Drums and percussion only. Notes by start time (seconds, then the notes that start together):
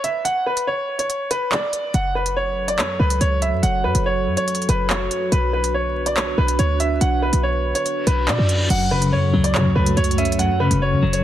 0.04 closed hi-hat
0.25 closed hi-hat
0.57 closed hi-hat
0.99 closed hi-hat
1.10 closed hi-hat
1.31 closed hi-hat
1.52 clap
1.73 closed hi-hat
1.94 closed hi-hat
2.26 closed hi-hat
2.68 closed hi-hat
2.79 clap
3.10 closed hi-hat
3.21 closed hi-hat
3.42 closed hi-hat
3.63 closed hi-hat
3.95 closed hi-hat
4.37 closed hi-hat
4.48 closed hi-hat
4.55 closed hi-hat
4.62 closed hi-hat
4.69 closed hi-hat
4.90 clap
5.11 closed hi-hat
5.32 closed hi-hat
5.64 closed hi-hat
6.06 closed hi-hat
6.17 clap
6.48 closed hi-hat
6.59 closed hi-hat
6.80 closed hi-hat
7.01 closed hi-hat
7.33 closed hi-hat
7.75 closed hi-hat
7.86 closed hi-hat
8.07 closed hi-hat
8.28 clap
8.49 closed hi-hat
8.70 closed hi-hat, crash
9.02 closed hi-hat
9.44 closed hi-hat
9.55 clap
9.86 closed hi-hat
9.97 closed hi-hat
10.04 closed hi-hat
10.11 closed hi-hat
10.18 closed hi-hat
10.25 closed hi-hat
10.32 closed hi-hat
10.39 closed hi-hat
10.71 closed hi-hat
11.13 closed hi-hat